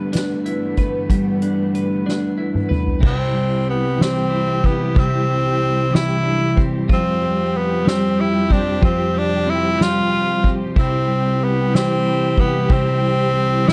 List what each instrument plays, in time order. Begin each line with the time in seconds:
Already playing: string section G2 D3 E3 A3 B3, clean electric guitar G3 D4 B4
0.13 clean electric guitar D4, snare, closed hi-hat
0.46 clean electric guitar E4, closed hi-hat
0.77 clean electric guitar B4, kick, closed hi-hat
1.10 clean electric guitar G3, kick, closed hi-hat
1.42 clean electric guitar D4, closed hi-hat
1.75 clean electric guitar B4, closed hi-hat
2.06 clean electric guitar D4, snare
2.38 clean electric guitar E4
2.55 mid tom
2.69 clean electric guitar B4, mid tom
2.87 floor tom
3.00 string section C2 C3 G3 E4 G4, clean electric guitar C3 E4, kick, crash
3.06 tenor saxophone C4
3.33 clean electric guitar G3, ride
3.68 tenor saxophone B3, ride
3.98 clean electric guitar E3, snare, ride
4.02 tenor saxophone C4
4.30 clean electric guitar E4, ride
4.63 tenor saxophone B3, kick, ride
4.95 clean electric guitar C3 E4, kick, ride
4.99 tenor saxophone C4
5.27 clean electric guitar G3
5.60 clean electric guitar C4, ride
5.91 clean electric guitar E3, snare, ride
5.95 tenor saxophone E4
6.23 clean electric guitar D4, ride
6.39 clean electric guitar E4
6.57 clean electric guitar C4, kick, ride
6.88 string section F2 C3 F3 G4, clean electric guitar F3 F4, kick, ride
6.94 tenor saxophone C4
7.21 clean electric guitar G3, ride
7.54 tenor saxophone B3, ride
7.85 clean electric guitar G3, snare, ride
7.89 tenor saxophone C4
8.18 tenor saxophone E4, ride
8.49 clean electric guitar C4, tenor saxophone D4, kick, ride
8.82 clean electric guitar F3, tenor saxophone C4, kick, ride
9.14 clean electric guitar G3, tenor saxophone D4, ride
9.46 clean electric guitar C4, tenor saxophone E4
9.78 clean electric guitar G3, snare, ride
9.82 tenor saxophone F4
10.11 clean electric guitar F4, ride
10.43 clean electric guitar C4, kick, ride
10.76 string section C2 G3 E4 G4, clean electric guitar C3 E4, tenor saxophone C4, kick, ride
11.08 clean electric guitar G3, ride
11.41 tenor saxophone B3, ride
11.73 clean electric guitar E3, tenor saxophone C4, snare, ride
12.05 clean electric guitar E4, ride
12.37 tenor saxophone B3, kick, ride
12.70 clean electric guitar C3 E4, tenor saxophone C4, kick, ride
13.02 clean electric guitar G3, ride
13.33 clean electric guitar C4, ride
13.65 clean electric guitar E3, tenor saxophone E4, snare